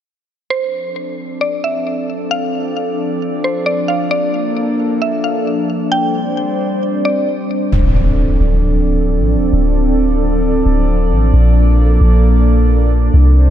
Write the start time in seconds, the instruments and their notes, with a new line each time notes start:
0.50 ambient pad F3 C4 D4 A4 D5, synth pluck C5
1.41 synth pluck D5
1.64 synth pluck E5
2.31 synth pluck F5
3.44 synth pluck C5
3.66 synth pluck D5
3.88 synth pluck F5
4.11 ambient pad A#3 A4, synth pluck D5
5.02 synth pluck E5
5.24 synth pluck F5
5.92 ambient pad G3 C4 C5 D5, synth pluck G5
7.05 synth pluck D5
7.72 808-style bass D1, ambient pad F3 C4 D4 A4 D5, impact
8.40 808-style bass D1
9.19 808-style bass A1
9.36 808-style bass D1
9.53 808-style bass D1
10.66 808-style bass D1
11.11 808-style bass A1
11.33 808-style bass A#1, ambient pad A#3
12.01 808-style bass A#1
13.14 808-style bass C2, ambient pad G3 C4 C5